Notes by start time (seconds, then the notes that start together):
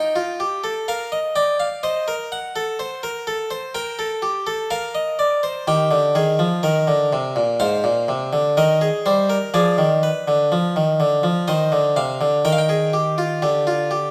Already playing: D#4 G5
0.16 F4
0.40 G4
0.64 A4
0.88 A#4 F5
1.12 D#5
1.36 D5 G5
1.60 F5
1.83 C5 D#5
2.08 A#4
2.32 F#5
2.56 A4
2.79 C5
3.03 A#4
3.27 A4
3.51 C5
3.75 A#4 G5
3.99 A4
4.22 G4
4.47 A4
4.71 A#4 F5
4.95 D#5
5.19 D5
5.43 C5
5.67 D#3 G4 G5
5.91 D3
6.15 D#3 G#4
6.39 F3
6.63 D#3 A#4
6.87 D3
7.13 C3
7.36 A#2
7.60 G#2 C5 F5
7.84 A#2
8.08 C3
8.33 D3
8.57 D#3 A#4 D#5
8.81 G#4
9.06 G3 C5
9.30 A#4
9.54 F3 G#4 D5
9.78 D#3
10.03 B4
10.28 D3
10.52 F3
10.76 D#3
11.00 D3
11.23 F3
11.48 D#3 C5 D#5
11.72 D3
11.96 C3 F5
12.21 D3
12.45 D#3 A#4 G5
12.52 F5
12.58 G5
12.69 G#4
12.93 G4
13.18 F4
13.42 D3 G4
13.67 F4
13.91 G4